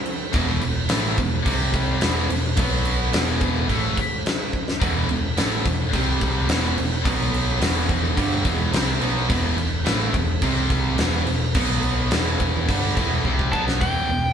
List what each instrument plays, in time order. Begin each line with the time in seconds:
0.06 crash
0.33 picked electric bass E1, distorted electric guitar E2 B2 E3, kick, crash
0.61 picked electric bass E1, distorted electric guitar E2 B2, crash
0.88 picked electric bass A1, distorted electric guitar A2 E3 A3, snare, crash
1.17 picked electric bass E1, distorted electric guitar E2 B2, kick, crash
1.45 picked electric bass C2, distorted electric guitar C3 G3 C4, kick, crash
1.74 kick, crash
2.01 picked electric bass E1, distorted electric guitar E2 B2 E3, snare, crash
2.30 picked electric bass E1, distorted electric guitar E2 B2, crash
2.57 picked electric bass B1, distorted electric guitar B2 F#3 B3, kick, crash
2.85 crash
3.13 picked electric bass E1, distorted electric guitar E2 B2 E3, snare, crash
3.41 kick, crash
3.68 picked electric bass A1, distorted electric guitar A2 E3 A3, kick, crash
3.97 kick, crash
4.26 snare, crash
4.53 kick
4.68 snare
4.80 picked electric bass E1, distorted electric guitar E2 B2 E3, kick, crash
5.09 picked electric bass E1, distorted electric guitar E2 B2, crash
5.37 picked electric bass A1, distorted electric guitar A2 E3 A3, snare, crash
5.65 picked electric bass E1, distorted electric guitar E2 B2, kick, crash
5.92 picked electric bass C2, distorted electric guitar C3 G3 C4, kick, crash
6.21 kick, crash
6.48 picked electric bass E1, distorted electric guitar E2 B2 E3, snare, crash
6.77 picked electric bass E1, distorted electric guitar E2 B2, crash
7.03 picked electric bass B1, distorted electric guitar B2 F#3 B3, kick, crash
7.34 crash
7.60 picked electric bass E1, distorted electric guitar E2 B2 E3, snare, crash
7.89 kick, crash
8.16 picked electric bass G1, distorted electric guitar G2 D3 G3, kick, crash
8.44 picked electric bass E1, distorted electric guitar E2 B2 E3, kick, crash
8.73 picked electric bass C2, distorted electric guitar C3 G3 C4, snare, crash
9.01 picked electric bass B1, distorted electric guitar B2 F#3 B3, crash
9.29 picked electric bass E1, distorted electric guitar E2 B2 E3, kick, crash
9.58 picked electric bass E1, distorted electric guitar E2 B2, crash
9.85 picked electric bass A1, distorted electric guitar A2 E3 A3, snare, crash
10.14 picked electric bass E1, distorted electric guitar E2 B2, kick, crash
10.42 picked electric bass C2, distorted electric guitar C3 G3 C4, kick, crash
10.70 kick, crash
10.98 picked electric bass E1, distorted electric guitar E2 B2 E3, snare, crash
11.27 picked electric bass E1, distorted electric guitar E2 B2, crash
11.54 picked electric bass B1, distorted electric guitar B2 F#3 B3, kick, crash
11.83 crash
12.11 picked electric bass E1, distorted electric guitar E2 B2 E3, snare, crash
12.40 kick, crash
12.68 picked electric bass G1, distorted electric guitar G2 D3 G3, kick, crash
12.97 picked electric bass E1, distorted electric guitar E2 B2 E3, kick, crash
13.25 picked electric bass C2, distorted electric guitar C3 G3 C4, kick
13.39 kick
13.52 picked electric bass B1, distorted electric guitar B2 F#3 B3, lead electric guitar A5, kick
13.68 snare
13.81 picked electric bass E1, distorted electric guitar E2 B2 E3, lead electric guitar G5, kick, open hi-hat
14.09 picked electric bass E1, distorted electric guitar E2 B2